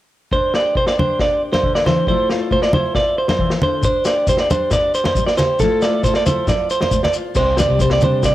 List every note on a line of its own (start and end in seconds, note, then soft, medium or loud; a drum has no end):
0.31 0.73 C3 medium
0.31 0.98 D4 soft
0.31 0.53 C5 medium
0.31 kick medium
0.54 2.06 G4 soft
0.54 0.76 D5 medium
0.54 snare medium
0.75 0.87 C5 medium
0.75 2.11 C5 soft
0.75 kick medium
0.87 0.98 D5 medium
0.87 snare medium
0.99 2.06 D4 medium
0.99 1.20 C5 medium
0.99 high conga medium
0.99 low conga medium
1.19 1.60 C3 medium
1.19 1.42 D5 medium
1.19 kick medium
1.19 snare medium
1.52 1.74 C5 medium
1.52 snare medium
1.52 high conga medium
1.63 1.86 D3 medium
1.63 kick medium
1.75 1.86 D5 medium
1.75 snare medium
1.86 2.08 E3 medium
1.86 2.07 C5 medium
1.86 snare medium
1.86 low conga medium
2.07 2.48 F3 medium
2.07 2.50 A3 medium
2.07 2.74 E4 soft
2.07 2.31 F4 soft
2.07 2.29 C5 medium
2.07 kick medium
2.11 2.51 A4 soft
2.30 3.82 F4 soft
2.30 muted clean electric guitar stroke medium
2.30 snare medium
2.51 2.91 A3 medium
2.51 3.84 A4 soft
2.51 2.63 C5 medium
2.51 kick medium
2.62 2.73 D5 medium
2.62 snare medium
2.73 3.82 E4 medium
2.73 2.95 C5 medium
2.73 high conga medium
2.73 low conga medium
2.95 3.36 C3 medium
2.95 3.17 D5 medium
2.95 kick medium
2.95 snare medium
3.18 3.28 C5 medium
3.28 3.50 C5 medium
3.28 snare medium
3.28 high conga medium
3.39 3.61 E3 medium
3.39 kick medium
3.50 snare medium
3.61 3.83 D3 medium
3.61 3.83 C5 medium
3.61 low conga medium
3.81 4.22 C3 medium
3.81 4.49 D4 soft
3.81 4.05 C5 medium
3.81 kick medium
3.81 shekere medium
4.05 5.37 G4 medium
4.05 4.27 D5 medium
4.05 snare medium
4.05 shekere medium
4.27 4.67 G3 medium
4.27 5.63 C5 medium
4.27 4.39 C5 medium
4.27 kick medium
4.27 shekere medium
4.37 4.50 D5 medium
4.37 snare medium
4.50 5.58 D4 soft
4.50 4.71 C5 medium
4.50 high conga medium
4.50 low conga medium
4.50 shekere medium
4.71 5.12 C3 medium
4.71 4.93 D5 medium
4.71 kick medium
4.71 snare medium
4.71 shekere medium
4.94 5.05 C5 medium
4.94 shekere medium
5.04 5.26 C5 medium
5.04 snare medium
5.04 high conga medium
5.15 5.56 G3 medium
5.15 kick medium
5.15 shekere medium
5.27 5.37 D5 medium
5.27 snare medium
5.37 5.58 G4 medium
5.37 5.58 C5 medium
5.37 snare medium
5.37 low conga medium
5.37 shekere medium
5.59 6.00 F3 medium
5.59 6.05 A3 soft
5.59 6.25 E4 medium
5.59 5.81 A4 medium
5.59 kick medium
5.59 snare soft
5.59 shekere medium
5.64 5.83 F4 soft
5.64 6.06 A4 medium
5.82 7.15 F4 medium
5.82 6.03 D5 medium
5.82 snare medium
5.82 shekere medium
6.03 7.37 A4 medium
6.03 6.14 C5 medium
6.03 muted steel-string acoustic guitar stroke medium
6.03 kick medium
6.03 snare soft
6.03 shekere medium
6.14 6.26 D5 medium
6.14 snare medium
6.26 7.33 E4 medium
6.26 6.47 C5 medium
6.26 high conga medium
6.26 low conga medium
6.26 shekere medium
6.47 6.87 C3 medium
6.47 6.69 D5 medium
6.47 kick medium
6.47 snare medium
6.47 high conga medium
6.47 shekere medium
6.70 6.80 C5 medium
6.70 shekere medium
6.81 7.02 C5 medium
6.81 snare medium
6.81 high conga medium
6.91 7.32 A3 medium
6.91 kick medium
6.91 shekere medium
7.03 7.14 D5 medium
7.03 snare medium
7.03 low conga medium
7.13 7.34 F4 soft
7.13 shekere medium
7.35 7.63 C2 medium
7.35 8.35 C3 medium
7.35 7.57 C5 medium
7.35 kick medium
7.35 snare soft
7.35 crash medium
7.35 shekere medium
7.57 8.24 G4 medium
7.57 7.79 D5 medium
7.57 snare medium
7.57 high conga medium
7.57 shekere medium
7.70 7.97 C2 medium
7.79 8.35 G3 medium
7.79 7.91 C5 medium
7.79 kick medium
7.79 shekere medium
7.90 8.02 D5 medium
7.90 snare medium
8.01 8.35 C3 medium
8.01 8.35 D4 medium
8.01 8.24 C5 medium
8.01 low conga medium
8.01 shekere medium
8.23 8.35 G4 medium
8.23 8.35 D5 medium
8.23 kick medium
8.23 snare medium
8.23 shekere medium